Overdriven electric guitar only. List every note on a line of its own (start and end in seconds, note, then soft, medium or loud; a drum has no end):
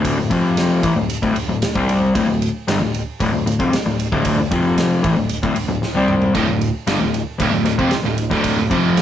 0.00 0.17 D2 medium
0.00 0.17 A2 medium
0.00 0.17 D3 loud
0.18 0.30 D2 medium
0.18 0.30 A2 medium
0.30 0.82 F2 medium
0.30 0.83 C3 loud
0.30 0.83 F3 loud
0.83 0.95 A2 medium
0.83 0.96 E3 loud
0.96 1.17 D2 medium
0.96 1.17 A2 medium
1.22 1.34 D2 medium
1.22 1.35 A2 loud
1.35 muted overdriven electric guitar stroke medium
1.49 1.62 D2 medium
1.49 1.62 A2 medium
1.63 muted overdriven electric guitar stroke medium
1.75 2.14 C3 medium
1.75 2.14 G3 loud
1.75 2.15 C4 medium
2.15 2.27 D2 medium
2.15 2.28 A2 loud
2.28 2.49 D2 medium
2.28 2.49 A2 medium
2.68 2.80 G2 medium
2.68 2.80 D3 medium
2.81 3.02 D2 medium
2.81 3.02 A2 medium
3.20 3.32 D2 loud
3.20 3.32 A2 loud
3.33 3.45 D2 medium
3.33 3.45 A2 medium
3.46 3.59 D2 medium
3.46 3.59 A2 medium
3.59 3.72 F2 medium
3.59 3.72 C3 loud
3.73 muted overdriven electric guitar stroke medium
3.86 4.07 D2 medium
3.86 4.07 A2 medium
4.12 4.37 D2 medium
4.12 4.37 A2 medium
4.12 4.38 D3 loud
4.38 4.51 D2 medium
4.38 4.51 A2 medium
4.51 5.03 F2 medium
4.51 5.03 C3 loud
4.51 5.03 F3 loud
5.03 5.16 A2 medium
5.03 5.16 E3 loud
5.16 5.38 D2 medium
5.16 5.38 A2 medium
5.43 5.55 D2 medium
5.43 5.56 A2 loud
5.56 muted overdriven electric guitar stroke medium
5.68 5.81 D2 medium
5.68 5.82 A2 medium
5.82 muted overdriven electric guitar stroke medium
5.95 6.34 C3 medium
5.95 6.34 G3 medium
5.95 6.35 C4 medium
6.35 6.47 D2 medium
6.35 6.47 A2 loud
6.48 6.69 D2 medium
6.48 6.69 A2 medium
6.87 6.99 G2 medium
6.87 7.00 D3 loud
7.00 7.21 D2 medium
7.00 7.21 A2 medium
7.38 7.50 D2 medium
7.38 7.50 A2 medium
7.51 7.64 D2 medium
7.51 7.64 A2 medium
7.65 7.77 D2 medium
7.65 7.78 A2 medium
7.78 7.91 F2 medium
7.78 7.91 C3 loud
7.91 muted overdriven electric guitar stroke medium
8.03 8.26 D2 medium
8.03 8.26 A2 medium
8.30 8.55 D2 medium
8.30 8.56 A2 medium
8.30 8.57 D3 medium
8.57 8.69 D2 medium
8.57 8.70 A2 medium
8.70 9.02 F2 medium
8.70 9.02 C3 medium
8.70 9.02 F3 loud